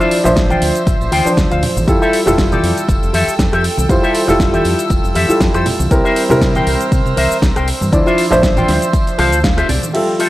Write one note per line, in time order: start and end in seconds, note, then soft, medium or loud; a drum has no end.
0.00 0.21 F3 medium
0.00 0.22 D4 medium
0.00 0.22 E4 medium
0.00 0.18 F4 loud
0.00 0.18 C5 medium
0.00 1.86 C5 medium
0.00 0.22 D5 medium
0.00 0.19 E5 loud
0.00 9.90 E6 medium
0.00 shaker soft
0.11 open hi-hat loud
0.11 tambourine medium
0.24 0.55 A1 medium
0.24 1.22 F3 medium
0.24 1.22 D4 medium
0.24 1.23 C5 loud
0.24 1.23 E5 medium
0.24 tambourine soft
0.24 low conga medium
0.24 shaker medium
0.36 muted clean electric guitar stroke soft
0.36 kick loud
0.36 snare loud
0.36 closed hi-hat medium
0.36 tambourine soft
0.36 shaker medium
0.50 0.81 F4 medium
0.50 0.81 C5 medium
0.50 0.81 G5 medium
0.50 closed hi-hat soft
0.50 high conga medium
0.50 shaker soft
0.62 0.70 D2 medium
0.62 open hi-hat loud
0.62 tambourine medium
0.75 closed hi-hat soft
0.75 tambourine soft
0.75 shaker medium
0.87 0.95 A1 medium
0.87 kick loud
0.87 closed hi-hat medium
0.87 tambourine soft
0.87 shaker soft
1.01 1.08 A1 medium
1.01 tambourine soft
1.01 shaker soft
1.12 1.26 D2 medium
1.12 1.31 F4 loud
1.12 1.32 C5 loud
1.12 1.32 G5 loud
1.12 open hi-hat loud
1.12 tambourine medium
1.12 high conga medium
1.25 1.85 F3 medium
1.25 1.85 D4 medium
1.25 1.86 C5 medium
1.25 muted fingered electric bass stroke soft
1.25 tambourine soft
1.25 shaker medium
1.37 1.46 D2 medium
1.37 kick loud
1.37 snare loud
1.37 closed hi-hat medium
1.37 tambourine soft
1.37 shaker medium
1.50 1.62 D2 medium
1.50 1.62 F4 medium
1.50 1.63 C5 medium
1.50 1.63 F5 medium
1.50 closed hi-hat soft
1.50 shaker soft
1.63 muted fingered electric bass stroke soft
1.63 open hi-hat loud
1.63 tambourine medium
1.63 low conga medium
1.76 1.83 A1 medium
1.76 muted clean electric guitar stroke soft
1.76 tambourine soft
1.76 high conga medium
1.76 shaker medium
1.87 1.96 F2 medium
1.87 2.23 G3 medium
1.87 2.23 E4 medium
1.87 2.24 F4 medium
1.87 5.87 A4 medium
1.87 2.24 A4 medium
1.87 5.87 G5 medium
1.87 kick loud
1.87 closed hi-hat medium
1.87 tambourine medium
1.87 shaker soft
2.01 2.20 G4 loud
2.01 2.20 A4 medium
2.01 2.20 E5 loud
2.01 tambourine soft
2.01 shaker soft
2.13 open hi-hat loud
2.13 tambourine medium
2.26 2.56 F1 medium
2.26 3.86 G3 medium
2.26 3.87 E4 medium
2.26 3.87 F4 medium
2.26 3.87 A4 loud
2.26 cross-stick medium
2.26 tambourine soft
2.26 low conga medium
2.26 shaker medium
2.38 muted clean electric guitar stroke soft
2.38 kick loud
2.38 snare loud
2.38 closed hi-hat medium
2.38 tambourine medium
2.38 shaker medium
2.51 2.83 G4 medium
2.51 2.83 A4 medium
2.51 2.83 D5 medium
2.51 closed hi-hat soft
2.51 high conga medium
2.51 low conga medium
2.51 shaker soft
2.63 2.72 F2 loud
2.63 open hi-hat loud
2.63 tambourine medium
2.77 closed hi-hat soft
2.77 tambourine soft
2.77 shaker medium
2.89 2.97 F1 medium
2.89 kick loud
2.89 closed hi-hat medium
2.89 tambourine medium
2.89 shaker medium
3.02 3.09 F1 medium
3.02 tambourine soft
3.02 shaker soft
3.13 3.27 F2 medium
3.13 3.33 G4 loud
3.13 3.33 A4 loud
3.13 3.34 E5 loud
3.13 open hi-hat loud
3.13 tambourine medium
3.13 high conga medium
3.27 muted fingered electric bass stroke soft
3.27 tambourine soft
3.27 shaker medium
3.39 3.47 F2 medium
3.39 kick loud
3.39 snare loud
3.39 closed hi-hat medium
3.39 tambourine soft
3.39 shaker medium
3.52 3.67 F2 medium
3.52 3.64 G4 medium
3.52 3.64 A4 medium
3.52 3.65 E5 medium
3.52 cross-stick medium
3.52 closed hi-hat soft
3.52 shaker soft
3.64 open hi-hat loud
3.64 tambourine medium
3.77 3.85 C2 medium
3.77 muted clean electric guitar stroke soft
3.77 tambourine soft
3.77 high conga medium
3.77 shaker medium
3.89 3.98 F2 loud
3.89 4.25 G3 medium
3.89 4.25 E4 medium
3.89 4.25 F4 medium
3.89 4.25 C5 medium
3.89 kick loud
3.89 closed hi-hat medium
3.89 tambourine soft
3.89 shaker medium
4.03 4.21 G4 loud
4.03 4.22 A4 loud
4.03 4.22 E5 loud
4.03 tambourine soft
4.03 shaker soft
4.14 open hi-hat loud
4.14 tambourine loud
4.27 4.58 F1 medium
4.27 5.26 G3 medium
4.27 5.26 E4 medium
4.27 5.26 F4 medium
4.27 5.26 A4 loud
4.27 cross-stick medium
4.27 tambourine soft
4.27 low conga medium
4.27 shaker medium
4.39 muted clean electric guitar stroke soft
4.39 kick loud
4.39 snare loud
4.39 closed hi-hat medium
4.39 tambourine medium
4.39 shaker medium
4.53 4.84 G4 medium
4.53 4.85 A4 medium
4.53 4.85 E5 medium
4.53 closed hi-hat soft
4.53 high conga medium
4.53 shaker soft
4.65 4.73 F2 medium
4.65 open hi-hat medium
4.65 tambourine medium
4.79 closed hi-hat medium
4.79 tambourine soft
4.79 shaker medium
4.90 4.99 F1 medium
4.90 kick loud
4.90 closed hi-hat medium
4.90 tambourine medium
4.90 shaker medium
5.04 5.11 F1 medium
5.04 tambourine soft
5.04 shaker soft
5.15 5.29 F2 medium
5.15 5.35 G4 loud
5.15 5.35 A4 medium
5.15 5.35 E5 loud
5.15 open hi-hat medium
5.15 tambourine medium
5.15 high conga medium
5.28 5.88 G3 medium
5.28 5.88 E4 medium
5.28 5.88 F4 medium
5.28 5.89 A4 medium
5.28 muted fingered electric bass stroke soft
5.28 tambourine soft
5.28 shaker medium
5.41 5.49 F2 loud
5.41 kick loud
5.41 snare loud
5.41 closed hi-hat medium
5.41 tambourine medium
5.41 shaker medium
5.54 5.65 F2 medium
5.54 5.66 G4 medium
5.54 5.66 A4 medium
5.54 5.66 C5 medium
5.54 cross-stick medium
5.54 closed hi-hat soft
5.54 shaker soft
5.66 muted fingered electric bass stroke soft
5.66 open hi-hat loud
5.66 tambourine medium
5.66 low conga medium
5.79 5.87 C2 medium
5.79 muted clean electric guitar stroke soft
5.79 tambourine soft
5.79 high conga medium
5.79 shaker medium
5.91 5.99 C2 loud
5.91 6.27 G3 medium
5.91 6.27 C4 medium
5.91 6.27 E4 medium
5.91 6.27 A#4 medium
5.91 7.91 C5 medium
5.91 7.91 A#5 medium
5.91 kick loud
5.91 closed hi-hat medium
5.91 tambourine medium
5.91 shaker medium
6.04 6.23 A#4 loud
6.04 6.23 C5 loud
6.04 6.24 E5 loud
6.04 tambourine soft
6.04 shaker soft
6.16 open hi-hat loud
6.16 tambourine loud
6.29 6.60 C3 medium
6.29 7.90 G3 loud
6.29 7.90 C4 medium
6.29 7.90 E4 medium
6.29 7.91 A#4 loud
6.29 cross-stick medium
6.29 tambourine soft
6.29 low conga medium
6.29 shaker medium
6.41 muted clean electric guitar stroke soft
6.41 kick loud
6.41 snare loud
6.41 closed hi-hat medium
6.41 tambourine medium
6.41 shaker medium
6.55 6.86 A#4 medium
6.55 6.86 C5 medium
6.55 6.87 G5 medium
6.55 closed hi-hat soft
6.55 high conga medium
6.55 low conga medium
6.55 shaker soft
6.67 6.75 C2 medium
6.67 open hi-hat loud
6.67 tambourine medium
6.80 closed hi-hat medium
6.80 tambourine soft
6.80 shaker medium
6.92 7.00 C3 medium
6.92 kick loud
6.92 closed hi-hat medium
6.92 tambourine soft
6.92 shaker medium
7.06 7.13 C3 medium
7.06 tambourine soft
7.06 shaker soft
7.17 7.31 C2 medium
7.17 7.36 A#4 loud
7.17 7.37 C5 loud
7.17 7.37 E5 loud
7.17 open hi-hat medium
7.17 tambourine loud
7.17 high conga medium
7.31 tambourine soft
7.31 shaker medium
7.42 7.51 C2 loud
7.42 kick loud
7.42 snare loud
7.42 closed hi-hat medium
7.42 tambourine medium
7.42 shaker medium
7.56 7.71 C2 medium
7.56 7.67 A#4 medium
7.56 7.68 C5 medium
7.56 7.68 G5 medium
7.56 cross-stick medium
7.56 closed hi-hat medium
7.56 shaker soft
7.68 open hi-hat medium
7.68 tambourine medium
7.81 7.88 G2 medium
7.81 muted clean electric guitar stroke soft
7.81 tambourine soft
7.81 high conga medium
7.81 shaker medium
7.92 8.01 D2 loud
7.92 8.28 F3 medium
7.92 8.28 D4 medium
7.92 8.29 E4 medium
7.92 9.93 C5 medium
7.92 8.29 D5 medium
7.92 kick loud
7.92 closed hi-hat medium
7.92 tambourine medium
7.92 shaker medium
8.06 8.25 F4 loud
8.06 8.25 C5 loud
8.06 8.25 E5 loud
8.06 tambourine soft
8.06 shaker soft
8.18 open hi-hat loud
8.18 tambourine loud
8.30 8.61 A1 medium
8.30 9.29 F3 medium
8.30 9.29 D4 medium
8.30 9.30 C5 loud
8.30 9.29 E5 medium
8.30 cross-stick medium
8.30 tambourine soft
8.30 low conga loud
8.30 shaker medium
8.43 muted clean electric guitar stroke soft
8.43 kick loud
8.43 snare loud
8.43 closed hi-hat medium
8.43 tambourine medium
8.43 shaker medium
8.56 8.88 F4 medium
8.56 8.88 C5 medium
8.56 8.88 G5 medium
8.56 closed hi-hat soft
8.56 tambourine soft
8.56 high conga medium
8.56 low conga medium
8.56 shaker soft
8.68 8.77 D2 loud
8.68 snare medium
8.68 open hi-hat loud
8.68 tambourine medium
8.82 closed hi-hat medium
8.82 tambourine soft
8.82 shaker medium
8.93 kick loud
8.93 closed hi-hat medium
8.93 tambourine medium
8.93 shaker medium
9.07 closed hi-hat soft
9.07 tambourine soft
9.07 shaker soft
9.18 9.33 C2 loud
9.18 9.38 F4 loud
9.18 9.38 C5 loud
9.18 9.39 F5 loud
9.18 9.42 A5 medium
9.18 cross-stick medium
9.18 open hi-hat medium
9.18 tambourine medium
9.18 high conga medium
9.32 9.62 D2 medium
9.32 closed hi-hat soft
9.32 tambourine soft
9.32 shaker medium
9.44 9.68 F5 medium
9.44 kick loud
9.44 snare loud
9.44 closed hi-hat medium
9.44 tambourine medium
9.44 shaker medium
9.57 9.69 F4 medium
9.57 9.69 C5 medium
9.57 9.69 E5 loud
9.57 cross-stick medium
9.57 closed hi-hat medium
9.57 tambourine soft
9.57 shaker soft
9.69 9.78 C2 medium
9.69 9.93 D5 medium
9.69 open hi-hat loud
9.69 tambourine loud
9.69 low conga medium
9.83 muted clean electric guitar stroke soft
9.83 closed hi-hat soft
9.83 tambourine soft
9.83 high conga medium
9.83 shaker medium
9.93 10.29 F3 medium
9.93 10.29 G3 medium
9.93 10.29 F4 medium
9.93 10.29 A4 medium
9.93 10.29 E5 medium
9.93 10.29 G5 medium
9.93 closed hi-hat medium
9.93 crash medium
10.19 10.29 F4 loud
10.19 10.29 G4 medium
10.19 10.29 A4 medium
10.19 10.29 E5 loud
10.19 open hi-hat medium